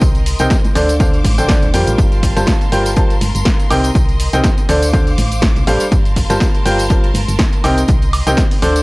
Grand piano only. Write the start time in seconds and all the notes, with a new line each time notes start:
0.40 C3 D#4 A#4 C5 G5
0.75 D3 D4 A4 C5 D5
1.00 D3 D4 A4 C5 F5
1.38 D3 D4 A4 C5 G5
1.49 D3 D4 A4 C5 D5
1.74 G3 F4 A#4 C5 G5
2.37 G3 F4 A#4 C5 A5
2.72 G3 F4 A#4 C5 G5
2.97 G3 F4 A#4 C5 A5
3.71 C3 D#4 A#4 C5 G5
4.33 C3 D#4 A#4 C5 G5
4.69 D3 D4 A4 C5 D5
4.93 D3 D4 A4 C5 F5
5.67 G3 D4 A4 C5 F5
6.30 G3 F4 A#4 C5 A5
6.66 G3 F4 A#4 C5 G5
6.90 G3 F4 A#4 C5 A5
7.64 C3 D#4 A#4 C5 G5
8.27 C3 D#4 A#4 C5 G5
8.62 D3 D4 A4 C5 D5